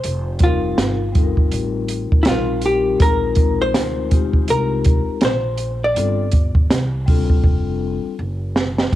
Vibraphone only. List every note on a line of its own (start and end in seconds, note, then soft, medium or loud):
0.39 0.95 G3 medium
0.39 0.95 C4 medium
0.39 0.96 D#4 medium
0.39 0.96 F4 medium
0.39 0.97 A#4 medium
1.13 2.19 G3 medium
1.13 2.19 C4 medium
1.13 2.20 D#4 medium
1.13 2.20 F4 medium
1.13 1.23 A4 medium
1.23 2.24 A#4 medium
2.24 2.99 G3 medium
2.24 2.98 C4 medium
2.24 2.99 D#4 medium
2.24 3.00 F4 medium
2.24 3.01 A#4 medium
2.98 4.04 G#3 medium
2.98 4.05 C4 medium
2.98 4.05 D#4 medium
2.98 4.06 F4 medium
2.98 3.09 G#4 medium
3.08 4.09 A#4 medium
4.09 5.15 G#3 medium
4.09 5.16 C4 medium
4.09 5.16 D#4 medium
4.09 5.17 F4 medium
4.09 5.17 G4 medium
5.94 6.24 G3 medium
5.94 6.24 C4 medium
5.94 6.24 D4 medium
5.94 6.25 F4 medium
5.94 6.25 A4 medium
7.06 8.12 G3 medium
7.06 8.12 C4 medium
7.06 8.13 D4 medium
7.06 8.13 F4 medium
7.06 8.14 A4 medium
8.90 8.95 G3 medium
8.90 8.95 C4 medium
8.90 8.95 D4 medium